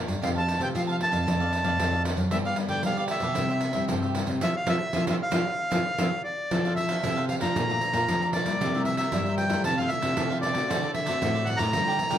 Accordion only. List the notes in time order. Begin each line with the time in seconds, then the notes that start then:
0.23 F5
0.38 A5
0.63 G5
0.77 F5
0.91 F5
1.02 A5
2.32 E5
2.46 F5
2.69 G5
2.86 F5
2.99 F5
3.11 E5
4.42 E5
4.56 F5
4.69 E5
5.11 E5
5.22 F5
6.24 D5
6.76 E5
7.29 F5
7.42 A#5
8.33 D5
8.85 E5
8.98 E5
9.38 G5
9.65 A5
9.77 F5
9.88 E5
10.41 D5
10.94 E5
11.45 F#5
11.57 A#5